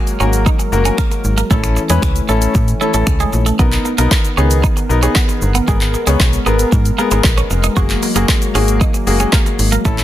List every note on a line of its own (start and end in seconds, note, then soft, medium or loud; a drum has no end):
0.00 1.49 F#3 medium
0.00 1.47 G#3 medium
0.00 0.10 A#3 medium
0.00 0.10 F#4 medium
0.00 0.10 G#4 medium
0.00 1.47 A#4 medium
0.07 closed hi-hat medium
0.07 shaker medium
0.20 0.48 G#1 medium
0.20 0.59 A#3 medium
0.20 0.29 C#4 medium
0.20 0.59 F#4 medium
0.20 0.59 A#4 medium
0.20 shaker soft
0.33 closed hi-hat medium
0.33 shaker medium
0.46 0.55 D#4 medium
0.46 kick loud
0.46 shaker medium
0.59 muted clean electric guitar stroke soft
0.59 closed hi-hat medium
0.59 shaker medium
0.72 0.91 F#1 loud
0.72 0.82 A#3 medium
0.72 0.82 F#4 medium
0.72 0.82 A#4 medium
0.72 shaker soft
0.85 1.34 A#3 medium
0.85 0.94 C#4 medium
0.85 1.34 F#4 medium
0.85 1.34 A#4 medium
0.85 closed hi-hat medium
0.85 shaker medium
0.98 1.07 A#3 medium
0.98 finger snap loud
0.98 kick loud
0.98 shaker medium
1.12 muted clean electric guitar stroke soft
1.12 closed hi-hat medium
1.12 shaker medium
1.24 1.43 G#1 medium
1.24 shaker medium
1.38 1.46 A#3 medium
1.38 closed hi-hat medium
1.38 shaker medium
1.50 1.79 A1 loud
1.50 3.57 E3 medium
1.50 3.57 A3 medium
1.50 1.59 A3 medium
1.50 1.80 C#4 medium
1.50 3.57 C#4 medium
1.50 1.80 E4 medium
1.50 1.80 A4 medium
1.50 kick loud
1.50 shaker medium
1.64 finger snap medium
1.64 closed hi-hat medium
1.64 shaker soft
1.77 muted clean electric guitar stroke soft
1.77 shaker medium
1.90 1.99 E2 medium
1.90 1.99 G#3 medium
1.90 2.19 C#4 medium
1.90 2.19 E4 medium
1.90 2.19 B4 medium
1.90 closed hi-hat medium
1.90 shaker medium
2.02 2.21 C#2 medium
2.02 finger snap loud
2.02 kick loud
2.02 shaker medium
2.16 closed hi-hat medium
2.16 shaker medium
2.29 2.48 A1 medium
2.29 2.38 A3 medium
2.29 2.68 C#4 medium
2.29 2.68 E4 medium
2.29 2.68 A4 medium
2.29 shaker soft
2.42 closed hi-hat medium
2.42 shaker medium
2.55 2.74 A2 loud
2.55 muted clean electric guitar stroke soft
2.55 kick loud
2.55 shaker medium
2.68 closed hi-hat soft
2.68 shaker soft
2.81 2.90 A3 medium
2.81 2.91 C#4 medium
2.81 2.91 E4 medium
2.81 2.91 A4 medium
2.81 shaker soft
2.94 3.04 A1 medium
2.94 3.03 A3 medium
2.94 3.43 C#4 medium
2.94 3.43 E4 medium
2.94 3.43 A4 medium
2.94 closed hi-hat medium
2.94 shaker medium
3.07 3.26 C#2 loud
3.07 finger snap loud
3.07 kick loud
3.07 shaker medium
3.20 3.29 G#3 medium
3.20 closed hi-hat medium
3.20 shaker medium
3.33 3.52 A#1 medium
3.33 muted clean electric guitar stroke soft
3.33 shaker medium
3.46 3.55 A3 medium
3.46 closed hi-hat medium
3.46 shaker medium
3.59 3.78 B1 loud
3.59 5.66 D#3 medium
3.59 3.88 B3 medium
3.59 7.73 B3 medium
3.59 3.68 B3 medium
3.59 3.89 D#4 medium
3.59 7.73 A#4 medium
3.59 3.89 A#4 medium
3.59 kick loud
3.59 shaker medium
3.72 clap medium
3.72 closed hi-hat soft
3.72 shaker soft
3.85 muted clean electric guitar stroke soft
3.85 shaker medium
3.98 4.08 B1 loud
3.98 4.07 A#3 medium
3.98 4.28 B3 medium
3.98 4.28 D#4 medium
3.98 4.28 A#4 medium
3.98 closed hi-hat medium
3.98 shaker medium
4.11 kick loud
4.11 snare medium
4.11 clap loud
4.11 shaker medium
4.25 closed hi-hat medium
4.25 shaker medium
4.37 4.66 C#2 medium
4.37 4.77 B3 medium
4.37 4.46 C#4 medium
4.37 4.77 D#4 medium
4.37 4.77 G#4 medium
4.37 shaker soft
4.51 closed hi-hat medium
4.51 shaker medium
4.64 4.72 D#4 medium
4.64 kick loud
4.64 shaker medium
4.77 muted clean electric guitar stroke soft
4.77 closed hi-hat soft
4.77 shaker medium
4.89 5.09 B1 loud
4.89 4.99 B3 medium
4.89 4.99 D#4 medium
4.89 5.00 A#4 medium
4.89 shaker soft
5.03 5.52 B3 medium
5.03 5.11 C#4 medium
5.03 5.52 D#4 medium
5.03 5.52 G#4 medium
5.03 closed hi-hat medium
5.03 shaker medium
5.15 5.25 B3 medium
5.15 kick loud
5.15 snare loud
5.15 clap loud
5.15 shaker medium
5.29 muted clean electric guitar stroke soft
5.29 closed hi-hat medium
5.29 shaker medium
5.42 5.61 G1 medium
5.42 shaker medium
5.55 5.64 B3 medium
5.55 closed hi-hat medium
5.55 shaker medium
5.68 5.96 G#1 loud
5.68 9.81 G#3 medium
5.68 5.77 G#3 medium
5.68 5.97 B3 medium
5.68 5.97 G#4 medium
5.68 5.97 A#4 medium
5.68 kick loud
5.68 shaker medium
5.81 clap medium
5.81 closed hi-hat soft
5.81 shaker soft
5.94 muted clean electric guitar stroke soft
5.94 shaker medium
6.07 6.16 C#2 medium
6.07 6.16 G#3 medium
6.07 6.36 B3 medium
6.07 6.36 G#4 medium
6.07 6.37 C#5 medium
6.07 closed hi-hat medium
6.07 shaker medium
6.20 6.39 B1 loud
6.20 kick loud
6.20 snare medium
6.20 clap loud
6.20 shaker medium
6.33 closed hi-hat medium
6.33 shaker medium
6.46 6.65 G#1 medium
6.46 6.85 B3 medium
6.46 6.55 B3 medium
6.46 6.85 G#4 medium
6.46 6.85 A#4 medium
6.46 shaker soft
6.59 closed hi-hat medium
6.59 shaker medium
6.72 6.91 G#2 loud
6.72 muted clean electric guitar stroke soft
6.72 kick loud
6.72 shaker medium
6.85 closed hi-hat medium
6.85 shaker medium
6.98 7.07 A#3 medium
6.98 7.08 B3 medium
6.98 7.08 G#4 medium
6.98 7.08 A#4 medium
6.98 shaker medium
7.11 7.21 G#1 medium
7.11 7.60 B3 medium
7.11 7.20 B3 medium
7.11 7.60 G#4 medium
7.11 7.60 A#4 medium
7.11 closed hi-hat medium
7.11 shaker medium
7.24 7.43 A#1 medium
7.24 kick loud
7.24 snare medium
7.24 clap loud
7.24 shaker medium
7.38 7.46 C#4 medium
7.38 closed hi-hat medium
7.38 shaker medium
7.50 7.69 F1 medium
7.50 muted clean electric guitar stroke soft
7.50 shaker medium
7.64 7.72 D#4 medium
7.64 closed hi-hat medium
7.64 shaker medium
7.76 7.95 F#1 loud
7.76 9.83 F#3 medium
7.76 8.06 A#3 medium
7.76 9.83 A#3 medium
7.76 8.06 F#4 medium
7.76 7.85 F#4 medium
7.76 8.06 G#4 medium
7.76 kick loud
7.76 shaker medium
7.90 clap medium
7.90 closed hi-hat medium
7.90 shaker soft
8.03 muted clean electric guitar stroke soft
8.03 open hi-hat medium
8.03 shaker medium
8.16 8.25 F#1 loud
8.16 8.45 A#3 medium
8.16 8.25 A#3 medium
8.16 8.45 F#4 medium
8.16 8.45 G#4 loud
8.16 closed hi-hat medium
8.16 shaker medium
8.29 kick loud
8.29 snare medium
8.29 clap loud
8.29 shaker medium
8.42 closed hi-hat medium
8.42 shaker medium
8.55 8.83 G#1 medium
8.55 8.94 A#3 medium
8.55 8.64 C#4 medium
8.55 8.94 F#4 medium
8.55 8.94 G#4 medium
8.55 open hi-hat medium
8.55 shaker soft
8.68 closed hi-hat medium
8.68 shaker medium
8.81 8.90 D#4 medium
8.81 kick loud
8.81 shaker medium
8.94 muted clean electric guitar stroke soft
8.94 closed hi-hat medium
8.94 shaker medium
9.07 9.26 F#1 medium
9.07 9.17 A#3 medium
9.07 9.17 F#4 medium
9.07 9.17 G#4 medium
9.07 open hi-hat medium
9.07 shaker medium
9.20 9.69 A#3 medium
9.20 9.29 C#4 medium
9.20 9.69 F#4 medium
9.20 9.69 G#4 medium
9.20 closed hi-hat medium
9.20 shaker medium
9.32 9.42 A#3 medium
9.32 kick loud
9.32 snare medium
9.32 clap loud
9.32 shaker medium
9.46 muted clean electric guitar stroke soft
9.46 closed hi-hat medium
9.46 shaker medium
9.59 9.78 G#1 medium
9.59 open hi-hat medium
9.59 shaker medium
9.72 9.81 A#3 medium
9.72 closed hi-hat medium
9.72 shaker medium
9.85 10.04 A1 loud
9.85 10.04 E3 medium
9.85 10.04 A3 medium
9.85 9.94 A3 medium
9.85 10.04 C#4 medium
9.85 10.04 E4 medium
9.85 10.04 A4 loud
9.85 kick loud
9.85 shaker medium
9.98 clap medium
9.98 closed hi-hat soft
9.98 shaker soft